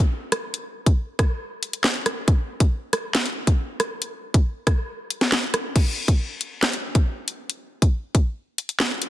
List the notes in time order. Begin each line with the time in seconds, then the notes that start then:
0.32 cross-stick, closed hi-hat
0.54 closed hi-hat
0.86 kick, closed hi-hat
1.19 kick, cross-stick, closed hi-hat
1.63 closed hi-hat
1.73 closed hi-hat
1.84 snare, clap
2.06 cross-stick, closed hi-hat
2.28 kick, closed hi-hat
2.60 kick, closed hi-hat
2.93 cross-stick, closed hi-hat
3.15 snare, clap, closed hi-hat
3.26 closed hi-hat
3.47 kick, closed hi-hat
3.80 cross-stick, closed hi-hat
4.02 closed hi-hat
4.34 kick, closed hi-hat
4.67 kick, cross-stick, closed hi-hat
5.10 closed hi-hat
5.21 snare, closed hi-hat
5.32 snare, clap, closed hi-hat
5.54 cross-stick, closed hi-hat
5.76 kick, closed hi-hat, crash
6.08 kick, closed hi-hat
6.41 closed hi-hat
6.62 snare, clap, closed hi-hat
6.73 closed hi-hat
6.95 kick, closed hi-hat
7.28 closed hi-hat
7.50 closed hi-hat
7.82 kick, closed hi-hat
8.15 kick, closed hi-hat
8.58 closed hi-hat
8.69 closed hi-hat
8.80 snare, clap
9.02 closed hi-hat